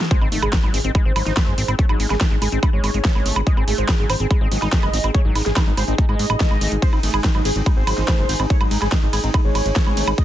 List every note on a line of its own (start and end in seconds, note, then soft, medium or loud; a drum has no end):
0.00 snare medium
0.00 swell medium
0.11 0.21 G#3 medium
0.11 10.24 D#4 medium
0.11 0.17 C5 loud
0.11 kick loud
0.11 closed hi-hat medium
0.11 impact medium
0.21 0.28 G#1 medium
0.21 0.29 C4 medium
0.21 0.28 D#4 medium
0.21 high woodblock soft
0.32 0.38 G#1 loud
0.32 0.42 A3 medium
0.32 0.38 D#4 medium
0.32 open hi-hat loud
0.42 0.49 G#1 loud
0.42 0.52 G#3 medium
0.42 0.49 G#4 loud
0.42 closed hi-hat medium
0.42 high woodblock medium
0.53 0.57 G#3 medium
0.53 0.59 D#4 medium
0.53 kick loud
0.53 snare loud
0.53 closed hi-hat medium
0.63 0.70 G#1 medium
0.63 0.73 F#3 medium
0.63 0.70 D#4 medium
0.63 high woodblock soft
0.70 10.24 G#5 loud
0.74 0.80 G#1 loud
0.74 0.78 C4 medium
0.74 0.80 G#4 medium
0.74 open hi-hat loud
0.78 10.24 G#4 medium
0.84 0.91 G#1 medium
0.84 0.92 C4 medium
0.84 0.90 D#4 medium
0.84 closed hi-hat medium
0.95 1.05 G#3 medium
0.95 1.01 D#4 medium
0.95 kick loud
0.95 closed hi-hat medium
0.95 high woodblock soft
1.05 1.12 G#1 medium
1.05 1.13 C4 medium
1.05 1.70 C5 loud
1.16 1.22 G#1 loud
1.16 1.23 F#3 medium
1.16 open hi-hat loud
1.16 high woodblock medium
1.26 1.33 G#1 medium
1.26 1.34 D#4 medium
1.26 snare soft
1.26 closed hi-hat medium
1.37 1.49 A3 medium
1.37 kick loud
1.37 snare loud
1.37 closed hi-hat medium
1.37 high woodblock soft
1.47 1.54 F#1 medium
1.47 1.55 G#3 medium
1.58 1.64 G#1 loud
1.58 1.62 C4 medium
1.58 open hi-hat loud
1.68 1.74 G#1 medium
1.68 1.76 C4 medium
1.68 closed hi-hat medium
1.68 high woodblock soft
1.79 1.86 A3 medium
1.79 1.85 C#5 medium
1.79 kick loud
1.79 closed hi-hat medium
1.89 1.95 G#1 medium
1.89 1.99 F#3 medium
1.89 1.95 D#4 medium
1.89 high woodblock medium
2.00 2.06 G#1 loud
2.00 2.07 G#3 medium
2.00 2.06 D#4 medium
2.00 open hi-hat loud
2.10 2.16 G#1 loud
2.10 2.15 G#3 medium
2.10 2.16 G#4 medium
2.10 snare soft
2.10 closed hi-hat medium
2.10 high woodblock soft
2.21 2.28 A3 medium
2.21 2.27 D#4 medium
2.21 kick loud
2.21 snare loud
2.21 closed hi-hat medium
2.31 2.37 G#1 medium
2.31 2.36 G#3 medium
2.31 2.37 D#4 medium
2.42 2.48 G#1 loud
2.42 2.49 G#3 medium
2.42 2.48 G#4 medium
2.42 open hi-hat loud
2.42 high woodblock soft
2.52 2.58 G#1 medium
2.52 2.59 C4 medium
2.52 2.58 D#4 medium
2.52 closed hi-hat medium
2.63 2.70 A3 medium
2.63 2.69 D#4 medium
2.63 kick loud
2.63 closed hi-hat medium
2.63 high woodblock medium
2.73 2.79 G#1 medium
2.73 2.83 G#3 medium
2.73 3.38 C#5 loud
2.84 2.90 G#1 loud
2.84 2.91 G#3 medium
2.84 open hi-hat loud
2.84 high woodblock soft
2.94 3.00 G#1 medium
2.94 2.99 G#3 medium
2.94 closed hi-hat medium
3.05 3.12 A3 medium
3.05 kick loud
3.05 snare loud
3.05 closed hi-hat medium
3.15 3.21 G#1 medium
3.15 3.27 G#3 medium
3.15 high woodblock soft
3.26 3.32 G#1 loud
3.26 3.36 A3 loud
3.26 open hi-hat loud
3.36 3.42 G#1 medium
3.36 3.40 G#3 medium
3.36 closed hi-hat medium
3.36 high woodblock medium
3.47 3.57 G#3 medium
3.47 3.53 D#5 loud
3.47 kick loud
3.47 closed hi-hat medium
3.57 3.63 G#1 medium
3.57 3.64 C4 medium
3.57 3.63 G#4 medium
3.57 high woodblock soft
3.68 3.74 G#1 loud
3.68 3.78 A3 medium
3.68 3.74 G#4 medium
3.68 open hi-hat loud
3.78 3.84 G#1 loud
3.78 3.88 G#3 medium
3.78 3.84 C5 medium
3.78 closed hi-hat medium
3.89 3.93 G#3 medium
3.89 3.95 G#4 medium
3.89 kick loud
3.89 snare loud
3.89 closed hi-hat medium
3.89 high woodblock soft
3.99 4.05 G#1 medium
3.99 4.09 F#3 medium
3.99 4.05 G#4 medium
4.10 4.16 G#1 loud
4.10 4.14 C4 medium
4.10 4.16 C5 medium
4.10 open hi-hat loud
4.10 high woodblock medium
4.20 4.26 G#1 medium
4.20 4.27 C4 medium
4.20 4.26 G#4 medium
4.20 closed hi-hat medium
4.31 4.41 G#3 medium
4.31 4.37 G#4 medium
4.31 kick loud
4.31 closed hi-hat medium
4.31 high woodblock soft
4.41 4.47 G#1 medium
4.41 4.48 C4 medium
4.41 5.06 D#5 loud
4.52 4.58 G#1 loud
4.52 4.59 F#3 medium
4.52 open hi-hat loud
4.62 4.68 G#1 medium
4.62 4.69 D#4 medium
4.62 snare soft
4.62 closed hi-hat medium
4.62 high woodblock soft
4.72 4.84 A3 medium
4.72 kick loud
4.72 snare loud
4.72 closed hi-hat medium
4.83 4.89 F#1 medium
4.83 4.90 G#3 medium
4.83 high woodblock medium
4.93 5.00 G#1 loud
4.93 4.98 C4 medium
4.93 open hi-hat loud
5.04 5.10 G#1 medium
5.04 5.11 C4 medium
5.04 closed hi-hat medium
5.04 high woodblock soft
5.14 5.22 A3 medium
5.14 5.21 C#5 loud
5.14 kick loud
5.14 closed hi-hat medium
5.25 5.31 G#1 medium
5.25 5.35 F#3 medium
5.25 5.31 D#4 medium
5.35 5.42 G#1 loud
5.35 5.43 G#3 medium
5.35 5.42 D#4 medium
5.35 open hi-hat loud
5.35 high woodblock soft
5.46 5.52 G#1 medium
5.46 5.50 G#3 medium
5.46 5.52 G#4 medium
5.46 snare soft
5.46 closed hi-hat medium
5.56 5.64 A3 medium
5.56 5.62 D#4 medium
5.56 kick loud
5.56 snare loud
5.56 closed hi-hat medium
5.56 high woodblock medium
5.67 5.73 G#1 medium
5.67 5.71 G#3 medium
5.67 5.73 D#4 medium
5.77 5.84 G#1 loud
5.77 5.85 G#3 medium
5.77 5.83 C5 medium
5.77 open hi-hat loud
5.77 high woodblock soft
5.88 5.94 G#1 loud
5.88 5.95 C4 medium
5.88 5.94 D#4 medium
5.88 closed hi-hat medium
5.98 6.06 A3 medium
5.98 6.04 D#4 medium
5.98 kick loud
5.98 closed hi-hat medium
6.09 6.15 G#2 medium
6.09 6.19 G#3 medium
6.09 6.74 D#5 loud
6.09 high woodblock soft
6.19 6.26 G#2 loud
6.19 6.27 G#3 medium
6.19 open hi-hat loud
6.30 6.36 A1 medium
6.30 6.34 G#3 medium
6.30 closed hi-hat medium
6.30 high woodblock medium
6.40 6.48 A3 medium
6.40 kick loud
6.40 snare loud
6.40 closed hi-hat medium
6.51 6.57 G#1 medium
6.51 6.63 G#3 medium
6.51 high woodblock soft
6.61 6.67 G#1 loud
6.61 6.71 A3 loud
6.61 open hi-hat loud
6.72 6.78 G#1 medium
6.72 6.76 G#3 medium
6.72 closed hi-hat medium
6.82 6.92 G#3 medium
6.82 6.88 C5 loud
6.82 kick loud
6.82 closed hi-hat medium
6.82 ride medium
6.93 6.99 G#1 medium
6.93 7.00 C4 medium
6.93 6.99 D#4 medium
6.93 high woodblock soft
7.03 7.09 G#1 loud
7.03 7.13 A3 medium
7.03 7.09 D#4 medium
7.03 open hi-hat loud
7.03 ride medium
7.14 7.20 G#1 loud
7.14 7.24 G#3 medium
7.14 7.20 G#4 loud
7.14 closed hi-hat medium
7.14 high woodblock medium
7.24 7.29 G#3 medium
7.24 7.30 D#4 medium
7.24 kick loud
7.24 snare loud
7.24 closed hi-hat medium
7.24 ride medium
7.35 7.41 G#1 medium
7.35 7.45 F#3 medium
7.35 7.41 D#4 medium
7.35 high woodblock soft
7.45 7.51 G#1 loud
7.45 7.50 C4 medium
7.45 7.51 G#4 medium
7.45 open hi-hat loud
7.45 ride medium
7.56 7.62 G#1 medium
7.56 7.63 C4 medium
7.56 7.62 D#4 medium
7.56 closed hi-hat medium
7.66 7.76 G#3 medium
7.66 7.72 D#4 medium
7.66 kick loud
7.66 closed hi-hat medium
7.66 ride medium
7.66 high woodblock soft
7.77 7.83 G#1 medium
7.77 7.84 C4 medium
7.77 8.42 C5 loud
7.87 7.93 G#1 loud
7.87 7.94 F#3 medium
7.87 open hi-hat loud
7.87 ride medium
7.87 high woodblock medium
7.98 8.04 G#1 loud
7.98 8.05 D#4 medium
7.98 snare soft
7.98 closed hi-hat medium
8.08 8.20 A3 medium
8.08 kick loud
8.08 snare loud
8.08 closed hi-hat medium
8.08 ride medium
8.08 high woodblock soft
8.19 8.25 F#1 medium
8.19 8.26 G#3 medium
8.29 8.35 G#1 loud
8.29 8.33 C4 medium
8.29 open hi-hat loud
8.29 ride medium
8.40 8.46 G#1 loud
8.40 8.47 C4 medium
8.40 closed hi-hat medium
8.40 high woodblock soft
8.50 8.57 A3 medium
8.50 8.56 C#5 loud
8.50 kick loud
8.50 closed hi-hat medium
8.50 ride medium
8.61 8.67 G#1 medium
8.61 8.71 F#3 medium
8.61 8.67 D#4 medium
8.61 high woodblock medium
8.71 8.77 G#1 loud
8.71 8.78 G#3 medium
8.71 8.77 D#4 medium
8.71 open hi-hat loud
8.71 ride medium
8.82 8.88 G#1 loud
8.82 8.86 G#3 medium
8.82 8.88 G#4 loud
8.82 snare soft
8.82 closed hi-hat medium
8.82 high woodblock soft
8.92 8.99 A3 medium
8.92 8.98 D#4 medium
8.92 kick loud
8.92 snare loud
8.92 closed hi-hat medium
8.92 ride medium
9.03 9.09 G#1 medium
9.03 9.07 G#3 medium
9.03 9.09 D#4 medium
9.13 9.19 G#1 loud
9.13 9.20 G#3 medium
9.13 9.19 G#4 medium
9.13 open hi-hat loud
9.13 ride medium
9.13 high woodblock soft
9.24 9.30 G#1 medium
9.24 9.31 C4 medium
9.24 9.30 D#4 medium
9.24 closed hi-hat medium
9.34 9.41 A3 medium
9.34 9.40 D#4 medium
9.34 kick loud
9.34 closed hi-hat medium
9.34 ride medium
9.34 high woodblock medium
9.45 9.51 G#1 medium
9.45 9.55 G#3 medium
9.45 10.10 C#5 loud
9.55 9.61 G#1 loud
9.55 9.62 G#3 medium
9.55 open hi-hat loud
9.55 ride medium
9.55 high woodblock soft
9.66 9.72 G#1 loud
9.66 9.70 G#3 medium
9.66 closed hi-hat medium
9.76 9.83 A3 medium
9.76 kick loud
9.76 snare loud
9.76 closed hi-hat medium
9.76 ride medium
9.87 9.93 G#1 medium
9.87 9.98 G#3 medium
9.87 high woodblock soft
9.97 10.03 G#1 loud
9.97 10.07 A3 loud
9.97 open hi-hat loud
9.97 ride medium
10.07 10.14 G#1 medium
10.07 10.12 G#3 medium
10.07 closed hi-hat medium
10.07 high woodblock medium
10.18 10.24 G#3 medium
10.18 10.24 D#5 medium
10.18 kick loud
10.18 closed hi-hat medium
10.18 ride medium